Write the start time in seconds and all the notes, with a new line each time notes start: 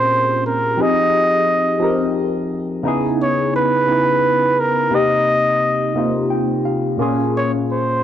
Already playing: A#2 A#3 C4 C#4 F4 G#4 A#4 C5
0.46 A#4
0.77 F3 C4 D#4 G4
0.81 G#4 D#5
1.79 F3 C4 D#4 G4
1.84 A#4
2.83 C#3 B3 D#4 E4
2.88 G#4
3.22 C#5
3.56 B4
3.87 C#3 B3 D#4 E4
3.91 B4
4.60 A#4
4.90 C3 A#3 C4 D#4
4.95 G4 D#5
5.94 C3 A#3 C4 D#4
5.98 F4
6.30 G5
6.65 F5
6.97 A#2 A#3 C#4 F4
7.02 G#4
7.37 C#5
7.72 C5